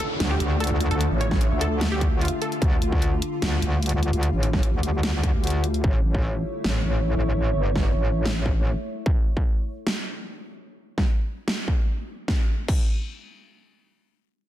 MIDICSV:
0, 0, Header, 1, 7, 480
1, 0, Start_track
1, 0, Tempo, 402685
1, 1200, Time_signature, 4, 2, 24, 8
1, 17263, End_track
2, 0, Start_track
2, 0, Title_t, "Ambient pad"
2, 0, Program_c, 0, 92
2, 0, Note_on_c, 0, 62, 89
2, 0, Note_on_c, 0, 69, 78
2, 742, Note_on_c, 0, 76, 95
2, 3120, Note_off_c, 0, 62, 0
2, 3120, Note_off_c, 0, 69, 0
2, 3120, Note_off_c, 0, 76, 0
2, 17263, End_track
3, 0, Start_track
3, 0, Title_t, "Synth pluck"
3, 0, Program_c, 1, 84
3, 0, Note_on_c, 1, 69, 92
3, 185, Note_off_c, 1, 69, 0
3, 364, Note_on_c, 1, 67, 91
3, 545, Note_off_c, 1, 67, 0
3, 720, Note_on_c, 1, 69, 94
3, 906, Note_off_c, 1, 69, 0
3, 1085, Note_on_c, 1, 69, 88
3, 1266, Note_off_c, 1, 69, 0
3, 1439, Note_on_c, 1, 73, 88
3, 1684, Note_off_c, 1, 73, 0
3, 1920, Note_on_c, 1, 69, 93
3, 2106, Note_off_c, 1, 69, 0
3, 2285, Note_on_c, 1, 67, 98
3, 2466, Note_off_c, 1, 67, 0
3, 2640, Note_on_c, 1, 65, 88
3, 2767, Note_off_c, 1, 65, 0
3, 2881, Note_on_c, 1, 69, 88
3, 3008, Note_off_c, 1, 69, 0
3, 17263, End_track
4, 0, Start_track
4, 0, Title_t, "Ambient pad"
4, 0, Program_c, 2, 92
4, 0, Note_on_c, 2, 50, 77
4, 0, Note_on_c, 2, 57, 71
4, 0, Note_on_c, 2, 65, 90
4, 3082, Note_off_c, 2, 57, 0
4, 3119, Note_on_c, 2, 55, 74
4, 6912, Note_off_c, 2, 50, 0
4, 6912, Note_off_c, 2, 65, 0
4, 6921, Note_off_c, 2, 55, 0
4, 6959, Note_on_c, 2, 73, 84
4, 6960, Note_on_c, 2, 57, 79
4, 6960, Note_on_c, 2, 64, 70
4, 10761, Note_off_c, 2, 57, 0
4, 10761, Note_off_c, 2, 64, 0
4, 10761, Note_off_c, 2, 73, 0
4, 17263, End_track
5, 0, Start_track
5, 0, Title_t, "Wobble bass"
5, 0, Program_c, 3, 39
5, 240, Note_on_c, 3, 38, 96
5, 461, Note_off_c, 3, 38, 0
5, 480, Note_on_c, 3, 38, 92
5, 825, Note_off_c, 3, 38, 0
5, 845, Note_on_c, 3, 38, 90
5, 1065, Note_off_c, 3, 38, 0
5, 1085, Note_on_c, 3, 38, 91
5, 1305, Note_off_c, 3, 38, 0
5, 1325, Note_on_c, 3, 33, 97
5, 1785, Note_off_c, 3, 33, 0
5, 1805, Note_on_c, 3, 38, 87
5, 2745, Note_off_c, 3, 38, 0
5, 3120, Note_on_c, 3, 38, 89
5, 3341, Note_off_c, 3, 38, 0
5, 3359, Note_on_c, 3, 38, 91
5, 3821, Note_off_c, 3, 38, 0
5, 4079, Note_on_c, 3, 38, 93
5, 4301, Note_off_c, 3, 38, 0
5, 4319, Note_on_c, 3, 38, 94
5, 4665, Note_off_c, 3, 38, 0
5, 4684, Note_on_c, 3, 38, 89
5, 4904, Note_off_c, 3, 38, 0
5, 4924, Note_on_c, 3, 38, 94
5, 5145, Note_off_c, 3, 38, 0
5, 5164, Note_on_c, 3, 33, 96
5, 5625, Note_off_c, 3, 33, 0
5, 5644, Note_on_c, 3, 38, 89
5, 6345, Note_off_c, 3, 38, 0
5, 6365, Note_on_c, 3, 38, 91
5, 6941, Note_off_c, 3, 38, 0
5, 6960, Note_on_c, 3, 33, 92
5, 7181, Note_off_c, 3, 33, 0
5, 7200, Note_on_c, 3, 33, 90
5, 7662, Note_off_c, 3, 33, 0
5, 7920, Note_on_c, 3, 33, 92
5, 8141, Note_off_c, 3, 33, 0
5, 8160, Note_on_c, 3, 33, 93
5, 8505, Note_off_c, 3, 33, 0
5, 8525, Note_on_c, 3, 33, 85
5, 8745, Note_off_c, 3, 33, 0
5, 8765, Note_on_c, 3, 33, 92
5, 8985, Note_off_c, 3, 33, 0
5, 9005, Note_on_c, 3, 31, 95
5, 9465, Note_off_c, 3, 31, 0
5, 9484, Note_on_c, 3, 33, 88
5, 10425, Note_off_c, 3, 33, 0
5, 17263, End_track
6, 0, Start_track
6, 0, Title_t, "Downlifter"
6, 0, Program_c, 4, 103
6, 0, Note_on_c, 4, 60, 74
6, 3120, Note_off_c, 4, 60, 0
6, 17263, End_track
7, 0, Start_track
7, 0, Title_t, "Drums"
7, 240, Note_on_c, 9, 38, 114
7, 240, Note_on_c, 9, 42, 78
7, 359, Note_off_c, 9, 38, 0
7, 359, Note_off_c, 9, 42, 0
7, 480, Note_on_c, 9, 42, 55
7, 599, Note_off_c, 9, 42, 0
7, 720, Note_on_c, 9, 42, 49
7, 761, Note_off_c, 9, 42, 0
7, 761, Note_on_c, 9, 42, 66
7, 800, Note_off_c, 9, 42, 0
7, 800, Note_on_c, 9, 42, 80
7, 919, Note_off_c, 9, 42, 0
7, 960, Note_on_c, 9, 42, 54
7, 1079, Note_off_c, 9, 42, 0
7, 1085, Note_on_c, 9, 42, 36
7, 1200, Note_off_c, 9, 42, 0
7, 1200, Note_on_c, 9, 42, 78
7, 1319, Note_off_c, 9, 42, 0
7, 1440, Note_on_c, 9, 42, 53
7, 1559, Note_off_c, 9, 42, 0
7, 1565, Note_on_c, 9, 36, 62
7, 1565, Note_on_c, 9, 38, 36
7, 1680, Note_on_c, 9, 42, 75
7, 1684, Note_off_c, 9, 36, 0
7, 1684, Note_off_c, 9, 38, 0
7, 1799, Note_off_c, 9, 42, 0
7, 1920, Note_on_c, 9, 42, 74
7, 2039, Note_off_c, 9, 42, 0
7, 2160, Note_on_c, 9, 38, 124
7, 2160, Note_on_c, 9, 42, 75
7, 2279, Note_off_c, 9, 38, 0
7, 2279, Note_off_c, 9, 42, 0
7, 2400, Note_on_c, 9, 36, 62
7, 2400, Note_on_c, 9, 42, 51
7, 2519, Note_off_c, 9, 36, 0
7, 2519, Note_off_c, 9, 42, 0
7, 2640, Note_on_c, 9, 42, 49
7, 2682, Note_off_c, 9, 42, 0
7, 2682, Note_on_c, 9, 42, 61
7, 2720, Note_off_c, 9, 42, 0
7, 2720, Note_on_c, 9, 42, 75
7, 2839, Note_off_c, 9, 42, 0
7, 2880, Note_on_c, 9, 42, 52
7, 2999, Note_off_c, 9, 42, 0
7, 3005, Note_on_c, 9, 42, 34
7, 3120, Note_off_c, 9, 42, 0
7, 3120, Note_on_c, 9, 36, 113
7, 3120, Note_on_c, 9, 42, 76
7, 3239, Note_off_c, 9, 36, 0
7, 3239, Note_off_c, 9, 42, 0
7, 3360, Note_on_c, 9, 42, 49
7, 3479, Note_off_c, 9, 42, 0
7, 3485, Note_on_c, 9, 36, 61
7, 3600, Note_on_c, 9, 42, 68
7, 3604, Note_off_c, 9, 36, 0
7, 3719, Note_off_c, 9, 42, 0
7, 3839, Note_on_c, 9, 42, 74
7, 3959, Note_off_c, 9, 42, 0
7, 4079, Note_on_c, 9, 38, 119
7, 4079, Note_on_c, 9, 42, 73
7, 4199, Note_off_c, 9, 38, 0
7, 4199, Note_off_c, 9, 42, 0
7, 4320, Note_on_c, 9, 42, 49
7, 4439, Note_off_c, 9, 42, 0
7, 4560, Note_on_c, 9, 42, 46
7, 4601, Note_off_c, 9, 42, 0
7, 4601, Note_on_c, 9, 42, 60
7, 4640, Note_off_c, 9, 42, 0
7, 4640, Note_on_c, 9, 42, 75
7, 4759, Note_off_c, 9, 42, 0
7, 4800, Note_on_c, 9, 42, 48
7, 4919, Note_off_c, 9, 42, 0
7, 4925, Note_on_c, 9, 42, 34
7, 5040, Note_off_c, 9, 42, 0
7, 5040, Note_on_c, 9, 42, 70
7, 5159, Note_off_c, 9, 42, 0
7, 5280, Note_on_c, 9, 42, 51
7, 5399, Note_off_c, 9, 42, 0
7, 5405, Note_on_c, 9, 36, 59
7, 5405, Note_on_c, 9, 38, 35
7, 5520, Note_on_c, 9, 42, 72
7, 5524, Note_off_c, 9, 36, 0
7, 5524, Note_off_c, 9, 38, 0
7, 5639, Note_off_c, 9, 42, 0
7, 5760, Note_on_c, 9, 42, 71
7, 5879, Note_off_c, 9, 42, 0
7, 6000, Note_on_c, 9, 38, 119
7, 6000, Note_on_c, 9, 42, 71
7, 6119, Note_off_c, 9, 38, 0
7, 6119, Note_off_c, 9, 42, 0
7, 6240, Note_on_c, 9, 36, 59
7, 6240, Note_on_c, 9, 42, 49
7, 6359, Note_off_c, 9, 36, 0
7, 6359, Note_off_c, 9, 42, 0
7, 6480, Note_on_c, 9, 42, 45
7, 6522, Note_off_c, 9, 42, 0
7, 6522, Note_on_c, 9, 42, 60
7, 6560, Note_off_c, 9, 42, 0
7, 6560, Note_on_c, 9, 42, 72
7, 6679, Note_off_c, 9, 42, 0
7, 6720, Note_on_c, 9, 42, 49
7, 6839, Note_off_c, 9, 42, 0
7, 6845, Note_on_c, 9, 42, 32
7, 6960, Note_on_c, 9, 36, 107
7, 6965, Note_off_c, 9, 42, 0
7, 7079, Note_off_c, 9, 36, 0
7, 7325, Note_on_c, 9, 36, 56
7, 7444, Note_off_c, 9, 36, 0
7, 7920, Note_on_c, 9, 38, 113
7, 8039, Note_off_c, 9, 38, 0
7, 9245, Note_on_c, 9, 36, 53
7, 9245, Note_on_c, 9, 38, 33
7, 9364, Note_off_c, 9, 36, 0
7, 9364, Note_off_c, 9, 38, 0
7, 9840, Note_on_c, 9, 38, 106
7, 9959, Note_off_c, 9, 38, 0
7, 10080, Note_on_c, 9, 36, 57
7, 10199, Note_off_c, 9, 36, 0
7, 10800, Note_on_c, 9, 36, 104
7, 10919, Note_off_c, 9, 36, 0
7, 11165, Note_on_c, 9, 36, 56
7, 11284, Note_off_c, 9, 36, 0
7, 11760, Note_on_c, 9, 38, 104
7, 11879, Note_off_c, 9, 38, 0
7, 13085, Note_on_c, 9, 36, 52
7, 13085, Note_on_c, 9, 38, 33
7, 13204, Note_off_c, 9, 36, 0
7, 13205, Note_off_c, 9, 38, 0
7, 13680, Note_on_c, 9, 38, 108
7, 13799, Note_off_c, 9, 38, 0
7, 13920, Note_on_c, 9, 36, 55
7, 14039, Note_off_c, 9, 36, 0
7, 14640, Note_on_c, 9, 36, 102
7, 14640, Note_on_c, 9, 38, 81
7, 14759, Note_off_c, 9, 36, 0
7, 14759, Note_off_c, 9, 38, 0
7, 15120, Note_on_c, 9, 36, 109
7, 15120, Note_on_c, 9, 49, 80
7, 15239, Note_off_c, 9, 36, 0
7, 15239, Note_off_c, 9, 49, 0
7, 17263, End_track
0, 0, End_of_file